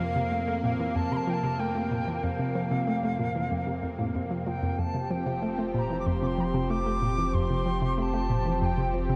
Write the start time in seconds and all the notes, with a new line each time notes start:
Already playing: F2 C3 A#3 F5
0.00 F3
0.16 C3
0.32 A3
0.48 A3
0.63 A#2 F5 G5
0.80 E3
0.95 F2 A5
1.12 C3 C6
1.16 A5
1.27 F3 G5
1.33 A5
1.43 C3
1.59 A3 G5
1.75 A3
1.91 A#2
2.08 E3
2.23 F2 F5
2.39 C3
2.55 F3
2.71 C3
2.87 A3
3.03 A3
3.19 A#2
3.35 E3
3.51 F2
3.67 C3
3.83 F2
3.99 A2
4.15 F2
4.31 F3
4.47 F3 G5
4.63 F2
4.79 F1 F2 F3 C4 G4 A5
4.94 C3
5.10 F3 G5
5.26 C3
5.42 A3
5.58 A3
5.74 A#2 C6
5.79 A#5
5.90 E3
5.99 D6
6.06 F2 C6
6.22 C3 D6
6.27 C6
6.38 F3 A#5
6.44 C6
6.54 C3
6.70 A3 D6
6.86 A3
7.02 A#2
7.18 E3
7.34 F2 C6
7.50 C3
7.66 F3
7.82 C3
7.98 A3 C6
8.02 A5
8.14 A3
8.30 A#2
8.46 E3
8.61 F2 G5 A5
8.78 C3
8.94 F3
9.10 C3